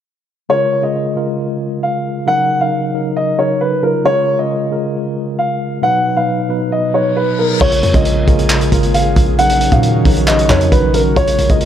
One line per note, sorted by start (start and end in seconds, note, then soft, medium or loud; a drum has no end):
0.49 0.80 C#3 loud
0.49 0.80 G#3 medium
0.49 0.80 F4 medium
0.49 0.80 A#4 loud
0.49 0.81 C#5 loud
0.82 1.13 C#3 medium
0.82 1.13 G#3 medium
0.82 1.13 F4 medium
0.82 1.14 G#4 medium
0.82 1.79 D#5 medium
1.16 1.97 C#3 medium
1.16 1.97 G#3 medium
1.16 1.97 F4 medium
1.16 1.98 A#4 medium
1.83 2.25 F5 medium
2.26 2.57 C#3 medium
2.26 2.57 F#3 medium
2.26 2.58 D#4 medium
2.26 2.58 A#4 loud
2.26 2.59 F#5 loud
2.61 2.91 C#3 medium
2.61 2.91 F#3 medium
2.61 2.92 D#4 medium
2.61 2.92 A#4 medium
2.61 3.13 F5 medium
2.94 3.34 C#3 medium
2.94 3.35 F#3 medium
2.94 3.35 D#4 medium
2.94 3.35 A#4 medium
3.17 3.37 D#5 medium
3.38 3.79 C#3 medium
3.38 3.79 F#3 medium
3.38 3.79 D#4 medium
3.38 3.80 A#4 medium
3.38 3.60 C#5 medium
3.61 3.82 B4 medium
3.82 4.03 C#3 medium
3.82 4.03 F#3 medium
3.82 4.03 D#4 medium
3.82 4.04 F4 medium
3.82 4.04 A#4 medium
4.04 4.35 C#3 medium
4.04 4.35 G#3 medium
4.04 4.36 F4 medium
4.04 4.36 A#4 loud
4.04 4.37 C#5 loud
4.38 4.69 C#3 medium
4.38 4.69 G#3 medium
4.38 4.69 F4 medium
4.38 4.69 G#4 medium
4.38 5.35 D#5 medium
4.71 5.52 C#3 medium
4.71 5.53 G#3 medium
4.71 5.53 F4 medium
4.71 5.53 A#4 medium
5.39 5.80 F5 medium
5.81 6.13 B2 medium
5.81 6.13 F#3 medium
5.81 6.13 D#4 medium
5.81 6.13 B4 loud
5.81 6.14 F#5 loud
6.16 6.46 B2 medium
6.16 6.47 F#3 medium
6.16 6.47 D#4 medium
6.16 6.47 B4 medium
6.16 6.69 F5 medium
6.49 6.90 B2 medium
6.49 6.90 F#3 medium
6.49 6.90 D#4 medium
6.49 6.90 B4 medium
6.72 6.93 D#5 medium
6.72 reverse cymbal medium
6.94 7.35 B2 medium
6.94 7.35 F#3 medium
6.94 7.35 D#4 medium
6.94 7.35 B4 medium
6.94 7.15 C#5 medium
7.16 7.37 B4 medium
7.39 7.59 B2 medium
7.39 7.59 F#3 medium
7.39 7.59 D#4 medium
7.39 7.60 G#4 medium
7.39 7.60 A#4 medium
7.61 7.82 A#1 loud
7.61 7.91 C#3 loud
7.61 9.37 C#3 medium
7.61 7.91 G#3 medium
7.61 9.37 A#3 medium
7.61 7.92 F4 medium
7.61 9.37 G#4 medium
7.61 7.92 A#4 loud
7.61 7.92 C#5 loud
7.61 kick loud
7.61 crash loud
7.72 closed hi-hat medium
7.83 7.94 F2 loud
7.83 closed hi-hat medium
7.93 8.26 A#1 loud
7.93 8.24 C#3 medium
7.93 8.24 G#3 medium
7.93 8.25 F4 medium
7.93 8.25 C#5 medium
7.93 8.90 D#5 medium
7.93 kick loud
7.93 closed hi-hat medium
8.05 closed hi-hat medium
8.27 8.70 A#1 loud
8.27 8.68 C#3 medium
8.27 8.68 G#3 medium
8.27 8.68 F4 medium
8.27 8.69 A#4 medium
8.27 kick loud
8.27 closed hi-hat medium
8.39 closed hi-hat medium
8.50 clap loud
8.50 closed hi-hat medium
8.61 closed hi-hat medium
8.71 9.15 G#1 loud
8.71 9.32 C#3 medium
8.71 9.33 G#3 medium
8.71 9.33 F4 medium
8.71 9.33 A#4 medium
8.71 kick medium
8.71 closed hi-hat medium
8.83 closed hi-hat medium
8.94 9.36 F5 medium
8.94 closed hi-hat medium
9.16 9.70 A#1 loud
9.16 kick medium
9.16 closed hi-hat medium
9.38 9.69 C#3 loud
9.38 11.15 D#3 medium
9.38 9.69 F#3 medium
9.38 11.15 C#4 medium
9.38 9.69 D#4 loud
9.38 11.15 F#4 medium
9.38 9.70 A#4 loud
9.38 9.70 F#5 loud
9.38 closed hi-hat medium
9.50 closed hi-hat medium
9.61 closed hi-hat medium
9.71 10.04 A#2 loud
9.71 10.02 C#3 medium
9.71 10.02 F#3 medium
9.71 10.02 D#4 medium
9.71 10.03 G#4 medium
9.71 10.24 F5 medium
9.71 kick loud
9.71 closed hi-hat medium
9.83 closed hi-hat medium
10.04 10.48 A#1 loud
10.04 10.45 C#3 medium
10.04 10.46 F#3 medium
10.04 10.46 D#4 medium
10.04 10.46 A#4 medium
10.04 kick loud
10.04 open hi-hat medium
10.17 closed hi-hat medium
10.28 10.49 D#5 medium
10.28 clap loud
10.28 closed hi-hat medium
10.39 closed hi-hat medium
10.49 10.71 F2 loud
10.49 10.90 C#3 medium
10.49 10.90 F#3 medium
10.49 10.90 D#4 medium
10.49 10.90 A#4 medium
10.49 10.71 C#5 medium
10.49 kick loud
10.49 clap loud
10.49 closed hi-hat medium
10.61 closed hi-hat medium
10.72 11.15 A#1 loud
10.72 10.93 B4 medium
10.72 kick loud
10.72 closed hi-hat medium
10.93 11.14 C#3 medium
10.93 11.14 F#3 medium
10.93 11.14 D#4 medium
10.93 11.15 A#4 medium
10.93 11.14 A#4 medium
10.93 closed hi-hat medium
11.15 11.38 A#1 loud
11.15 11.46 C#3 loud
11.15 11.65 C#3 medium
11.15 11.47 G#3 medium
11.15 11.65 A#3 medium
11.15 11.47 F4 medium
11.15 11.65 G#4 medium
11.15 11.47 A#4 loud
11.15 11.48 C#5 loud
11.15 kick loud
11.15 closed hi-hat medium
11.28 closed hi-hat medium
11.39 11.49 A#1 loud
11.39 closed hi-hat medium
11.49 11.65 A#1 loud
11.49 11.65 C#3 medium
11.49 11.65 G#3 medium
11.49 11.65 F4 medium
11.49 11.65 G#4 medium
11.49 11.65 D#5 medium
11.49 kick loud
11.49 closed hi-hat medium
11.61 closed hi-hat medium